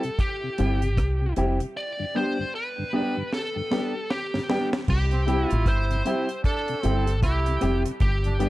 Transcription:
Already playing: lead electric guitar A4
0.03 tonewheel organ C3, closed hi-hat
0.19 lead electric guitar G4, kick, closed hi-hat
0.43 tonewheel organ C3
0.58 fingered electric bass G1, upright piano G3 C4 E4 G4, tonewheel organ G3 C4 E4, clean electric guitar C4 E4 G4, closed hi-hat
0.82 tonewheel organ C3, closed hi-hat
0.97 fingered electric bass C2, kick, cross-stick, closed hi-hat
1.21 tonewheel organ C3
1.36 fingered electric bass F1, tonewheel organ G3 C4 E4, upright piano G3 C4 E4 G4, clean electric guitar C4 E4 G4, closed hi-hat
1.60 tonewheel organ C3, closed hi-hat
1.77 lead electric guitar D5
2.00 tonewheel organ G2 D3
2.15 upright piano G3 B3 D4 G4, tonewheel organ G3 B3 D4, clean electric guitar B3 D4 G4, lead electric guitar C5
2.39 tonewheel organ G2 D3
2.55 lead electric guitar B4
2.78 tonewheel organ G2 D3
2.93 tonewheel organ G3 B3 D4, upright piano G3 B3 D4 G4, clean electric guitar B3 D4 G4
3.17 tonewheel organ G2 D3
3.33 lead electric guitar A4, snare
3.56 tonewheel organ G2 D3, muted clean electric guitar stroke
3.71 upright piano G3 B3 D4 G4, tonewheel organ G3 B3 D4, clean electric guitar B3 D4 G4, snare
4.10 lead electric guitar G4, snare
4.34 tonewheel organ G2 D3, snare
4.49 upright piano G3 B3 D4 G4, tonewheel organ G3 B3 D4, clean electric guitar B3 D4 G4, snare
4.73 snare
4.88 fingered electric bass C2, lead electric guitar G4, kick, crash
5.11 tonewheel organ C3, trombone C4, closed hi-hat
5.27 upright piano G3 C4 E4 G4, tonewheel organ G3 C4 E4, clean electric guitar C4 E4 G4, trombone E4, closed hi-hat
5.48 tonewheel organ C3, lead electric guitar F4, closed hi-hat
5.52 fingered electric bass A1
5.66 fingered electric bass G1, lead electric guitar C5, kick, cross-stick, closed hi-hat
5.91 tonewheel organ C3, closed hi-hat
6.05 upright piano G3 C4 E4 G4, tonewheel organ G3 C4 E4, clean electric guitar C4 E4 G4, trombone E4, closed hi-hat
6.29 closed hi-hat
6.44 trombone D4, lead electric guitar A4, kick, closed hi-hat
6.68 tonewheel organ C3, closed hi-hat
6.83 fingered electric bass G1, upright piano G3 C4 E4 G4, tonewheel organ G3 C4 E4, clean electric guitar C4 E4 G4, trombone C4, closed hi-hat
7.07 closed hi-hat
7.23 fingered electric bass C2, trombone E4, lead electric guitar G4, kick, cross-stick, closed hi-hat
7.46 tonewheel organ C3, muted clean electric guitar stroke, closed hi-hat
7.61 fingered electric bass F1, upright piano G3 C4 E4 G4, tonewheel organ G3 C4 E4, clean electric guitar C4 E4 G4, cross-stick, closed hi-hat
7.86 tonewheel organ C3, closed hi-hat
8.00 fingered electric bass G1, lead electric guitar G4, kick, closed hi-hat
8.24 tonewheel organ G2 D3, trombone D4, closed hi-hat
8.39 upright piano G3 B3 D4 G4, tonewheel organ G3 B3 D4, clean electric guitar B3 D4 G4, trombone G4, closed hi-hat

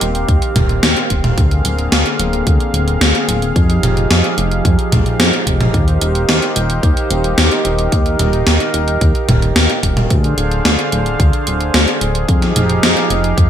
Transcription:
Already playing: analog synth pad D#3 A#3 C4 G4 F5
0.01 analog synth bass D#1, closed hi-hat
0.15 closed hi-hat
0.29 analog synth bass D#2, kick, closed hi-hat
0.42 closed hi-hat
0.56 analog synth bass D#1, kick, closed hi-hat, mid tom
0.69 closed hi-hat
0.83 analog synth bass D#2, snare, closed hi-hat
0.97 closed hi-hat
1.10 analog synth bass D#1, kick, closed hi-hat
1.24 closed hi-hat, mid tom
1.37 analog synth bass D2, analog synth pad D3 A#3 G#4, kick, closed hi-hat
1.51 closed hi-hat
1.65 analog synth bass D1, closed hi-hat
1.79 closed hi-hat
1.92 analog synth bass D2, snare, closed hi-hat
2.06 closed hi-hat
2.19 analog synth bass D1, closed hi-hat
2.33 closed hi-hat
2.47 analog synth bass D2, kick, closed hi-hat
2.60 closed hi-hat
2.74 analog synth bass D1, closed hi-hat
2.88 closed hi-hat
3.01 analog synth bass D2, snare, closed hi-hat
3.15 closed hi-hat
3.28 analog synth bass D1, closed hi-hat
3.42 closed hi-hat
3.56 analog synth bass F2, analog synth pad F3 D#4 G4, kick, closed hi-hat
3.70 closed hi-hat
3.83 analog synth bass F1, closed hi-hat, mid tom
3.97 closed hi-hat
4.10 analog synth bass F2, snare, closed hi-hat
4.24 closed hi-hat
4.38 analog synth bass F1, closed hi-hat
4.51 closed hi-hat
4.65 analog synth bass F2, kick, closed hi-hat
4.79 closed hi-hat
4.92 analog synth bass F1, kick, closed hi-hat, mid tom
5.06 closed hi-hat
5.20 analog synth bass F2, snare, closed hi-hat
5.33 closed hi-hat
5.47 analog synth bass F1, kick, closed hi-hat
5.61 closed hi-hat, mid tom
5.74 analog synth bass D#2, analog synth pad D#3 C5, kick, closed hi-hat
5.88 closed hi-hat
6.01 analog synth bass D#1, closed hi-hat
6.15 closed hi-hat
6.29 analog synth bass D#2, snare, closed hi-hat
6.42 closed hi-hat
6.56 analog synth bass D#1, closed hi-hat
6.70 closed hi-hat
6.83 analog synth bass D#2, kick, closed hi-hat
6.97 closed hi-hat
7.11 analog synth bass D#1, closed hi-hat
7.24 closed hi-hat
7.38 analog synth bass D#2, snare, closed hi-hat
7.51 closed hi-hat
7.65 analog synth bass D#1, closed hi-hat
7.79 closed hi-hat
7.92 analog synth bass D#2, analog synth pad A#4, kick, closed hi-hat
8.06 closed hi-hat
8.19 analog synth bass D#1, closed hi-hat, mid tom
8.33 closed hi-hat
8.47 analog synth bass D#2, snare, closed hi-hat
8.60 closed hi-hat
8.74 analog synth bass D#1, closed hi-hat
8.88 closed hi-hat
9.01 analog synth bass D#2, kick, closed hi-hat
9.15 closed hi-hat
9.29 analog synth bass D#1, kick, closed hi-hat, mid tom
9.42 closed hi-hat
9.56 analog synth bass D#2, snare, closed hi-hat
9.70 closed hi-hat
9.83 analog synth bass D#1, kick, closed hi-hat
9.97 closed hi-hat, mid tom
10.10 analog synth bass D2, analog synth pad D3 D4 G#4 C5 F5, kick, closed hi-hat
10.24 closed hi-hat
10.38 analog synth bass D1, closed hi-hat
10.51 closed hi-hat
10.65 analog synth bass D2, snare, closed hi-hat
10.79 closed hi-hat
10.92 analog synth bass D1, closed hi-hat
11.06 closed hi-hat
11.20 analog synth bass D2, kick, closed hi-hat
11.33 closed hi-hat
11.47 analog synth bass D1, closed hi-hat
11.61 closed hi-hat
11.74 analog synth bass D2, snare, closed hi-hat
11.88 closed hi-hat
12.01 analog synth bass D1, closed hi-hat
12.15 closed hi-hat
12.28 analog synth bass F2, analog synth pad F3 D#4 G4 F5, kick, closed hi-hat
12.42 snare, closed hi-hat
12.56 analog synth bass F1, closed hi-hat, mid tom
12.70 closed hi-hat
12.83 analog synth bass F2, snare, closed hi-hat
12.97 closed hi-hat
13.10 analog synth bass F1, closed hi-hat
13.24 closed hi-hat
13.37 analog synth bass F2, kick, closed hi-hat

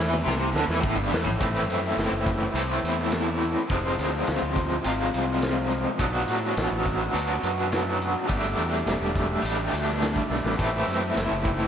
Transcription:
Already playing: fingered electric bass E2, overdriven electric guitar E3
0.13 mid tom
0.24 fingered electric bass C2, overdriven electric guitar C3, snare
0.52 fingered electric bass D2, overdriven electric guitar D3, snare
0.67 fingered electric bass E2, overdriven electric guitar E3, snare
0.81 fingered electric bass A1, overdriven electric guitar A2, kick
0.95 fingered electric bass G1, overdriven electric guitar G2
1.10 fingered electric bass E2, overdriven electric guitar E3, snare
1.25 fingered electric bass A1, overdriven electric guitar A2, floor tom
1.39 fingered electric bass A1, overdriven electric guitar A2 E3 A3 C4 E4, kick, closed hi-hat
1.68 fingered electric bass F#2, closed hi-hat
1.97 fingered electric bass F#1, snare, closed hi-hat
2.11 fingered electric bass F#1
2.26 kick, closed hi-hat
2.53 fingered electric bass C2, overdriven electric guitar A2 E3 A3 C4 E4, closed hi-hat
2.83 fingered electric bass E2, closed hi-hat
2.99 snare
3.12 snare, closed hi-hat
3.42 closed hi-hat
3.68 fingered electric bass F1, overdriven electric guitar F2 C3 F3 G#3 C4 F4, kick, closed hi-hat
3.99 fingered electric bass D2, snare, closed hi-hat
4.27 fingered electric bass D2, snare, closed hi-hat
4.42 fingered electric bass D2
4.56 kick, closed hi-hat
4.84 fingered electric bass G#1, overdriven electric guitar F2 C3 F3 G#3 C4 F4, closed hi-hat
5.14 fingered electric bass C2, closed hi-hat
5.42 snare, closed hi-hat
5.71 closed hi-hat
5.98 fingered electric bass B1, overdriven electric guitar B2 F#3 B3 D4 F#4, kick, closed hi-hat
6.28 fingered electric bass A2, closed hi-hat
6.57 fingered electric bass A1, snare, closed hi-hat
6.71 fingered electric bass A1
6.86 kick, closed hi-hat
7.13 fingered electric bass D2, overdriven electric guitar B2 F#3 B3 D4 F#4, closed hi-hat
7.43 fingered electric bass F#2, closed hi-hat
7.72 snare, closed hi-hat
8.02 closed hi-hat
8.27 fingered electric bass G1, overdriven electric guitar G3 A3 D4 G4, kick, closed hi-hat
8.58 fingered electric bass E2, closed hi-hat
8.86 fingered electric bass E1, snare, closed hi-hat
9.00 fingered electric bass E1
9.15 kick, closed hi-hat
9.42 fingered electric bass A1, overdriven electric guitar G3 A3 D4 G4, closed hi-hat
9.73 fingered electric bass D2, closed hi-hat
9.89 snare
10.02 snare, closed hi-hat
10.16 kick
10.29 fingered electric bass B1, snare
10.44 fingered electric bass A1, snare
10.57 fingered electric bass A1, overdriven electric guitar A2 E3 A3 C4 E4, kick, closed hi-hat
10.87 fingered electric bass F#2, closed hi-hat
11.16 fingered electric bass F#1, snare, closed hi-hat
11.31 fingered electric bass F#1
11.45 kick, closed hi-hat

